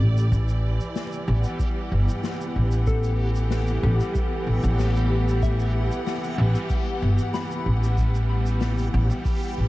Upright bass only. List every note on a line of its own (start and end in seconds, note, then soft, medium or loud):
0.00 0.31 A1 medium
0.32 0.77 A1 medium
1.28 1.42 A1 loud
1.92 2.06 G1 medium
2.56 3.80 A1 medium
3.83 3.98 A1 loud
4.47 4.61 A1 medium
4.63 5.88 A1 medium
6.38 6.53 A1 loud
7.02 7.17 G1 medium
7.66 8.91 A1 medium
8.94 9.08 A1 loud
9.58 9.68 A1 medium